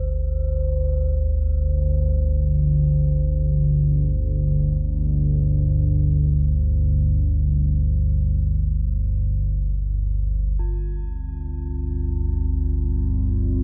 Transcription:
Already playing: G1 D2 C5
10.58 G1 D2 G3 F4
10.78 C4
12.06 F4

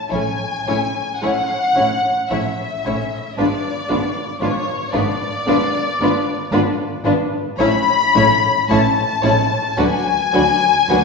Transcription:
0.10 A1 A2 A3 C#4 E4 C#5 G#5
0.67 A1 A2 A3 C#4 E4 C#5
1.22 A1 A2 A3 C#4 E4 C#5 F#5
1.75 A1 A2 A3 C#4 E4 C#5
2.29 A1 A3 C#4 E4 C#5 E5
2.33 A2
2.84 A1 A2 A3 C#4 E4 C#5
3.38 G#1 G#2 B3 D4 F4 B4 D5
3.89 G#1 G#2 B3 D4 F4 B4
4.40 G#1 G#2 B3 D4 F4 B4 C#5
4.92 G#1 G#2 B3 D4 F4 B4 D5
5.46 G#1 G#2 B3 D4 F4 B4
6.00 G#1 G#2 B3 D4 F4 B4
6.52 G#1 G#2 B3 D4 F4 B4
7.04 G#1 G#2 B3 D4 F4 B4
7.59 A1 A2 A3 C#4 E4 C#5 B5
8.15 A1 A2 A3 C#4 E4 C#5
8.69 A1 A2 A3 C#4 E4 C#5 A5
9.22 A1 A2 A3 C#4 E4 C#5
9.77 D2 F#3 D4 F#4 B4 G#5
10.33 D2 F#3 D4 F#4 B4
10.88 D2 F#3 D4 F#4 B4

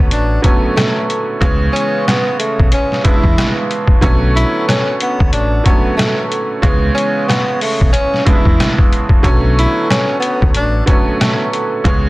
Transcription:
Already playing: D3 F#3 A3 B3 C#4
0.00 D2
0.11 A1 D4, closed hi-hat
0.42 D3 F#3 A3 B3 C#4, kick, closed hi-hat
0.76 A3, cross-stick, snare, closed hi-hat
1.10 closed hi-hat
1.41 C#2 C#3 E3 G#3 B3 C#4, kick, closed hi-hat
1.73 C#4, closed hi-hat
2.07 B3, cross-stick, snare, closed hi-hat
2.39 A3, closed hi-hat
2.60 B1, kick
2.72 C#4, closed hi-hat
2.92 snare
3.04 C#3 E3 G#3 B3 D4 E4, kick, closed hi-hat
3.14 E4
3.24 E2, kick
3.38 cross-stick, snare, closed hi-hat
3.71 closed hi-hat
3.88 kick
4.01 B1 D3 F#3 A3 B3 C#4, kick, closed hi-hat
4.36 E4, closed hi-hat
4.68 C#4, cross-stick, snare, closed hi-hat
5.00 B3, closed hi-hat
5.20 D2, kick
5.33 A1 D4, closed hi-hat
5.64 D3 F#3 A3 B3 C#4, kick, closed hi-hat
5.97 A3, cross-stick, snare, closed hi-hat
6.32 closed hi-hat
6.62 C#2 C#3 E3 G#3 B3 C#4, kick, closed hi-hat
6.95 C#4, closed hi-hat
7.28 B3, cross-stick, snare, closed hi-hat
7.61 A3, open hi-hat
7.81 B1, kick
7.92 C#4, closed hi-hat
8.14 snare
8.25 C#3 E3 G#3 B3 D4 E4, kick, closed hi-hat
8.35 E4
8.45 E2, kick
8.60 cross-stick, snare, closed hi-hat
8.78 kick
8.93 closed hi-hat
9.09 kick
9.23 B1 D3 F#3 A3 B3 C#4, kick, closed hi-hat
9.59 E4, closed hi-hat
9.90 C#4, cross-stick, snare, closed hi-hat
10.20 B3, closed hi-hat
10.42 D2, kick
10.54 A1 D4, closed hi-hat
10.86 D3 F#3 A3 B3 C#4, kick, closed hi-hat
11.20 A3, cross-stick, snare, closed hi-hat
11.53 closed hi-hat
11.84 C#2 C#3 E3 G#3 B3 C#4, kick, closed hi-hat

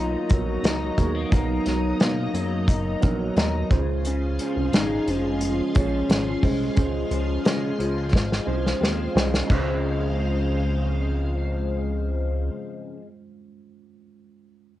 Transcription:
Already playing: B1 F#3 A#3 B3 D#4 F4 A#4 D#5 A#5
0.29 A#1 F#3 B3 D#4 A#4, kick, closed hi-hat
0.41 F#4
0.63 C#2 D#4, snare, closed hi-hat
0.86 F#4
0.98 D#2 F#3 G#3 B3 D#4 A#4, kick, closed hi-hat
1.15 A#3
1.30 B1 F#3 B3 D#4 A#4, kick, closed hi-hat
1.66 B1 F#3, snare, closed hi-hat
2.00 B2 A#3, snare, closed hi-hat
2.34 F#2 F#3, closed hi-hat
2.68 F#1 D#4, kick, closed hi-hat
3.01 A#1 F#3 B3 D#4 A#4, kick, closed hi-hat
3.36 D#2 D#4, snare, closed hi-hat
3.70 C#2 C#3 G#3 C#4 F4 G#4 C5 F5 C6, kick, closed hi-hat
4.05 C#3 C#4, closed hi-hat
4.39 F3 C#4, closed hi-hat
4.56 C2
4.73 G#1 G#3 D#4, snare, closed hi-hat
5.07 F1 F3 C#4, closed hi-hat
5.41 closed hi-hat
5.74 A#1 F3 G#3 C#4 F4 C#5, kick, closed hi-hat
6.09 G#1, snare, closed hi-hat
6.42 C2 G#3 C#4 F4 C5, kick, open hi-hat
6.75 C#2 G#3 C#4 F4 C5, kick, closed hi-hat
7.11 C#2 F3, closed hi-hat
7.45 C#3 G#3, snare, closed hi-hat
7.79 C#2 F3, closed hi-hat
8.13 G#1, kick, snare
8.32 snare
8.45 C2 F3 G#3 C#4 F4 C5
8.66 snare
8.81 D#2 C4, snare
9.14 C2 G#3 C#4 F4 C5, snare
9.34 snare
9.44 C#3 G#3 C#4
9.50 C#2 C#3 F3 G#3 F4 C5 F5, kick, china
9.54 G#3 C5
9.60 C4

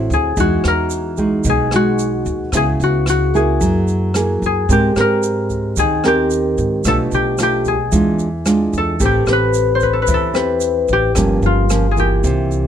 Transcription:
Already playing: A2 C4 E4 F#4 A4
0.10 D2 G#4, kick, closed hi-hat, shaker
0.37 E2 E3 G#3 D#4 F#4, kick, closed hi-hat, shaker
0.64 E2 A#4, cross-stick, closed hi-hat, shaker
0.90 closed hi-hat, shaker
1.17 G#3 D#4 F#4, kick, closed hi-hat, shaker
1.44 B1 B2, kick, closed hi-hat, shaker
1.49 G#4
1.71 G#3 D#4 F#4, cross-stick, closed hi-hat, shaker
1.76 F#4
1.99 closed hi-hat, shaker
2.26 D#2, kick, closed hi-hat, shaker
2.52 C#2 C#3 B3 E4 G#4, kick, cross-stick, closed hi-hat, shaker
2.57 G#4
2.79 C#2, closed hi-hat, shaker
2.83 F#4
3.06 F#4, cross-stick, closed hi-hat, shaker
3.34 A#3 E4 G#4, kick, closed hi-hat, shaker
3.61 F#2 F#3, kick, closed hi-hat, shaker
3.88 closed hi-hat, shaker
4.14 A#3 E4 G#4, cross-stick, closed hi-hat, shaker
4.42 F#2, kick, closed hi-hat, shaker
4.46 G#4
4.69 G#2 G#3 C4 G4 A#4, kick, closed hi-hat, shaker
4.96 G#2 C4 G4 A#4, cross-stick, closed hi-hat, shaker
5.00 A#4
5.23 closed hi-hat, shaker
5.50 kick, closed hi-hat, shaker
5.76 D#2 D#3 G#4, kick, closed hi-hat, shaker
6.04 C4 G4 A#4, cross-stick, closed hi-hat, shaker
6.31 closed hi-hat, shaker
6.58 G#2, kick, closed hi-hat, shaker
6.84 B1 B2 A3 D4 F4 A4, kick, cross-stick, closed hi-hat, shaker
7.11 B1 G4, closed hi-hat, shaker
7.38 A3 D4 F4, cross-stick, closed hi-hat, shaker
7.43 G4
7.65 G#4, kick, closed hi-hat, shaker
7.92 E2 E3 G#3 D4 F4, kick, closed hi-hat, shaker
8.19 closed hi-hat, shaker
8.45 G#3 D4 F4, cross-stick, closed hi-hat, shaker
8.73 E2, kick, closed hi-hat, shaker
8.78 A4
9.00 A1 A3 C4 G4 B4, kick, closed hi-hat, shaker
9.05 G4
9.26 A1 C4 G4 B4, cross-stick, closed hi-hat, shaker
9.33 B4
9.54 closed hi-hat, shaker
9.75 C5
9.80 B4, kick, closed hi-hat, shaker
9.93 A4
10.02 B4
10.07 E2 E3, kick, closed hi-hat, shaker
10.14 A4
10.33 C4 G4 B4, cross-stick, closed hi-hat, shaker
10.60 closed hi-hat, shaker
10.88 A1, kick, closed hi-hat, shaker
10.93 G4
11.15 G1 G2 F3 A#3 C#4, kick, cross-stick, closed hi-hat, shaker
11.42 G1 F4, closed hi-hat, shaker
11.70 F3 A#3 C#4, cross-stick, closed hi-hat, shaker
11.91 G#4
11.96 E3 A#3 G4, kick, closed hi-hat, shaker
12.24 C2 C3, kick, closed hi-hat, shaker
12.51 closed hi-hat, shaker

